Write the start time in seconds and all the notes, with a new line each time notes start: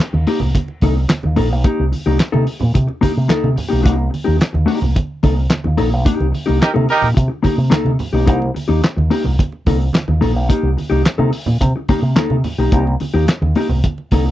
0.00 muted conga
0.13 D#2, muted clean electric guitar stroke, high conga
0.27 A#3 D#4 G4, open hi-hat
0.40 C2, muted clean electric guitar stroke, low conga
0.55 muted clean electric guitar stroke, kick, closed hi-hat, muted conga, high conga
0.68 muted conga
0.81 C2 A#3 D#4 A4, kick, open hi-hat, high conga
0.97 muted clean electric guitar stroke
1.08 snare, clap, closed hi-hat, high conga
1.23 D#2, muted clean electric guitar stroke, high conga
1.36 A#1 A#3 D#4 A4, open hi-hat, low conga
1.52 B1, muted clean electric guitar stroke
1.64 A#3 D#4 G4, kick, closed hi-hat
1.80 C2
1.92 muted clean electric guitar stroke, open hi-hat, high conga
2.06 C2 A#3 D#4 G4
2.19 muted clean electric guitar stroke, muted fingered electric bass stroke, snare, clap, closed hi-hat, muted conga
2.32 C3 A#3 D#4 A4, high conga
2.47 muted clean electric guitar stroke, open hi-hat
2.60 A#2, muted clean electric guitar stroke, low conga
2.74 C3, muted clean electric guitar stroke, kick, closed hi-hat, muted conga, high conga
2.88 muted clean electric guitar stroke, muted conga
3.01 A#3 D#4 G4, muted fingered electric bass stroke, kick, open hi-hat, high conga
3.14 C3, muted clean electric guitar stroke
3.28 A#3 D#4 A4, snare, clap, closed hi-hat, high conga
3.44 C3, high conga
3.56 muted clean electric guitar stroke, open hi-hat, low conga
3.69 A#3 D#4 G4
3.73 B1
3.83 C2 A#3 D#4 G4, kick, closed hi-hat, muted conga
3.96 muted clean electric guitar stroke
4.10 muted clean electric guitar stroke, open hi-hat, high conga
4.24 D#2 A#3 D#4 G4
4.39 muted clean electric guitar stroke, snare, clap, closed hi-hat
4.53 D#2, muted clean electric guitar stroke, high conga
4.66 A#3 D#4 G4, open hi-hat
4.81 C2, muted clean electric guitar stroke, low conga
4.95 muted clean electric guitar stroke, kick, closed hi-hat, muted conga, high conga
5.23 C2 A#3 D#4 A4, kick, open hi-hat, high conga
5.37 muted clean electric guitar stroke
5.50 snare, clap, closed hi-hat, muted conga, high conga
5.64 D#2, muted clean electric guitar stroke, muted conga, high conga
5.77 A#1 A#3 D#4 A4, open hi-hat, low conga
5.92 B1, muted clean electric guitar stroke
6.05 A#3 D#4 G4, kick, closed hi-hat, muted conga, low conga
6.20 C2, muted conga
6.32 muted clean electric guitar stroke, open hi-hat, high conga
6.46 C2 A#3 D#4 G4
6.61 D#4 G4 A#4, muted clean electric guitar stroke, muted fingered electric bass stroke, snare, clap, closed hi-hat, muted conga
6.74 C3 A#3 D#4 A4, high conga
6.88 D#4 G4 A#4, muted clean electric guitar stroke, open hi-hat
7.01 A#2, muted clean electric guitar stroke, low conga
7.14 C3, muted clean electric guitar stroke, kick, closed hi-hat, muted conga, high conga
7.28 muted clean electric guitar stroke
7.43 A#3 D#4 G4, muted fingered electric bass stroke, kick, open hi-hat, high conga
7.57 C3, muted clean electric guitar stroke
7.70 A#3 D#4 A4, snare, clap, closed hi-hat, muted conga, high conga
7.85 C3, muted conga, high conga
7.99 muted clean electric guitar stroke, open hi-hat, low conga
8.13 B1 A#3 D#4 G4
8.26 C2 A#3 D#4 G4, kick, closed hi-hat
8.41 muted clean electric guitar stroke, muted conga
8.55 muted clean electric guitar stroke, open hi-hat, high conga
8.68 D#2 A#3 D#4 G4
8.83 muted clean electric guitar stroke, snare, clap, closed hi-hat
8.97 D#2, muted clean electric guitar stroke, high conga
9.10 A#3 D#4 G4, open hi-hat
9.24 C2, muted clean electric guitar stroke, low conga
9.39 muted clean electric guitar stroke, kick, closed hi-hat, muted conga, high conga
9.52 muted conga
9.66 C2 A#3 D#4 A4, kick, open hi-hat, high conga
9.80 muted clean electric guitar stroke
9.93 snare, clap, closed hi-hat, muted conga, high conga
10.08 D#2, muted clean electric guitar stroke, muted conga, high conga
10.21 A#1 A#3 D#4 A4, open hi-hat, low conga
10.35 B1, muted clean electric guitar stroke
10.49 A#3 D#4 G4, kick, closed hi-hat, muted conga
10.63 C2
10.77 muted clean electric guitar stroke, open hi-hat, high conga
10.90 C2 A#3 D#4 G4
11.04 muted clean electric guitar stroke, muted fingered electric bass stroke, snare, clap, closed hi-hat, muted conga
11.18 C3 A#3 D#4 A4, high conga
11.32 muted clean electric guitar stroke, open hi-hat
11.46 A#2, muted clean electric guitar stroke, low conga
11.61 C3, muted clean electric guitar stroke, kick, closed hi-hat, muted conga, high conga
11.76 muted clean electric guitar stroke
11.89 A#3 D#4 G4, muted fingered electric bass stroke, kick, open hi-hat, high conga
12.02 C3, muted clean electric guitar stroke
12.15 A#3 D#4 A4, snare, clap, closed hi-hat, high conga
12.30 C3, muted conga, high conga
12.44 muted clean electric guitar stroke, open hi-hat, low conga
12.58 B1 A#3 D#4 G4
12.72 C2 A#3 D#4 G4, kick, closed hi-hat
12.86 muted clean electric guitar stroke, muted conga
13.00 muted clean electric guitar stroke, open hi-hat, high conga
13.14 D#2 A#3 D#4 G4
13.28 muted clean electric guitar stroke, snare, clap, closed hi-hat, muted conga
13.42 D#2, muted clean electric guitar stroke, muted conga, high conga
13.55 A#3 D#4 G4, open hi-hat
13.69 C2, muted clean electric guitar stroke, low conga
13.84 muted clean electric guitar stroke, kick, closed hi-hat, high conga
13.98 muted conga
14.11 C2 A#3 D#4 A4, kick, open hi-hat, high conga
14.27 muted clean electric guitar stroke